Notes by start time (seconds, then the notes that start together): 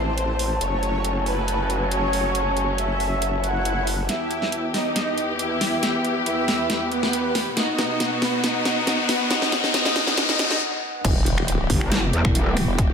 Already playing: A1 E3 A3 C4 E4 C5 A5
0.18 closed hi-hat
0.39 open hi-hat
0.61 F#1 F#3 C#4 F#4 C#5, closed hi-hat
0.83 closed hi-hat
0.99 C#5
1.05 closed hi-hat
1.26 B4, open hi-hat
1.48 closed hi-hat
1.70 closed hi-hat
1.91 C#5, closed hi-hat
2.13 open hi-hat
2.35 closed hi-hat
2.57 closed hi-hat
2.78 E5, closed hi-hat
3.00 open hi-hat
3.22 closed hi-hat, swell
3.44 F#5, closed hi-hat
3.65 closed hi-hat
3.87 open hi-hat
4.09 E2 E3 B3 E4 G4 E5, snare, closed hi-hat, riser
4.31 closed hi-hat
4.42 snare
4.47 B4
4.52 closed hi-hat
4.61 G5
4.74 D#4 D#5, snare, open hi-hat
4.96 snare, closed hi-hat
5.18 closed hi-hat
5.39 E4 E5, closed hi-hat
5.61 snare, open hi-hat
5.83 snare, closed hi-hat
6.05 closed hi-hat
6.26 E4 E5, closed hi-hat
6.48 snare, open hi-hat
6.70 snare, closed hi-hat
6.91 B3 B4, closed hi-hat
7.03 snare
7.13 closed hi-hat
7.35 snare, open hi-hat
7.57 B2 D#4 F#4 D#5, snare, closed hi-hat
7.79 snare, closed hi-hat
8.00 snare, closed hi-hat
8.04 F#5
8.22 B3 B4, snare, open hi-hat
8.44 D#4 D#5, snare, closed hi-hat
8.65 snare, closed hi-hat
8.87 snare, closed hi-hat
9.09 B3 B4, snare, open hi-hat
9.30 D#4 D#5, snare, closed hi-hat
9.42 snare
9.52 snare, closed hi-hat
9.64 snare
9.74 D#4 D#5, snare, closed hi-hat
9.85 snare
9.96 snare, open hi-hat
10.07 snare
10.17 D#4 D#5, snare, closed hi-hat
10.29 snare
10.39 D#4 D#5, snare, closed hi-hat
10.51 snare
11.05 E1 E3 B3 E4 F#4 G4, kick, closed hi-hat, crash, impact
11.26 closed hi-hat
11.32 G3
11.38 finger snap
11.48 closed hi-hat
11.70 G1, kick, open hi-hat
11.81 finger snap
11.92 snare, closed hi-hat
12.13 E2, closed hi-hat
12.25 E1, finger snap, kick
12.35 closed hi-hat
12.57 finger snap, open hi-hat
12.68 E1
12.79 kick, closed hi-hat